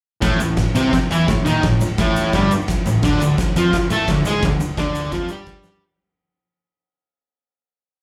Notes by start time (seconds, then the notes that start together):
0.21 A1 A2 A3, kick, snare, ride, shaker
0.39 A1 A2, ride, shaker
0.57 kick, snare, ride, shaker
0.75 C2 C3 C4, ride, shaker
0.93 muted picked electric bass stroke, muted distorted electric guitar stroke, kick, snare, ride, shaker
1.10 E2 E3 E4, ride, shaker
1.28 A1 A2, kick, snare, ride, shaker
1.45 D#2 D#3 D#4, ride, shaker
1.63 A1 A2, kick, snare, ride, shaker
1.81 muted picked electric bass stroke, muted distorted electric guitar stroke, ride, shaker
1.98 A1 A2 A3, kick, snare, ride, shaker
2.16 ride, shaker
2.33 G1 G2 G3, kick, snare, ride, shaker
2.51 ride, shaker
2.68 kick, snare, ride, shaker
2.86 A1 A2, ride, shaker
3.03 D2 D3 D4, kick, snare, crash, shaker
3.20 D2 D3, ride, shaker
3.38 kick, snare, ride, shaker
3.56 F2 F3 F4, ride, shaker
3.73 muted picked electric bass stroke, muted distorted electric guitar stroke, kick, snare, ride, shaker
3.90 A2 A3 A4, ride, shaker
4.08 D2 D3, kick, snare, ride, shaker
4.25 G#2 G#3 G#4, ride, shaker
4.43 D2 D3, kick, snare, ride, shaker
4.59 muted picked electric bass stroke, muted distorted electric guitar stroke, ride, shaker
4.77 D2 D3 D4, kick, snare, ride, shaker
4.95 ride, shaker
5.12 F2 F3 F4, kick, snare, ride, shaker
5.29 G2 G3 G4, ride, shaker
5.46 kick, snare, shaker
5.63 snare, shaker